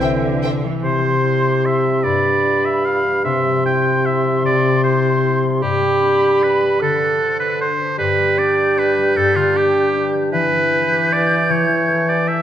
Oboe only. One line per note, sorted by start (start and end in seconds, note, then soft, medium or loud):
0.00 0.61 G5 soft
0.83 1.67 C5 medium
1.66 2.05 E5 soft
2.03 2.67 D5 medium
2.65 2.87 E5 medium
2.85 3.24 F5 medium
3.24 3.63 E5 medium
3.66 4.07 G5 medium
4.06 4.44 E5 medium
4.45 4.83 D5 medium
4.83 5.43 C5 soft
5.62 6.44 G4 medium
6.43 6.81 B4 medium
6.82 7.39 A4 medium
7.40 7.60 B4 medium
7.61 7.98 C5 medium
7.98 8.40 B4 medium
8.38 8.80 D5 medium
8.78 9.18 B4 medium
9.16 9.37 A4 medium
9.36 9.58 F4 medium
9.57 10.16 G4 medium
10.33 11.14 B4 medium
11.12 11.52 D5 medium
11.50 12.10 C#5 medium
12.08 12.29 D5 medium
12.28 12.42 E5 medium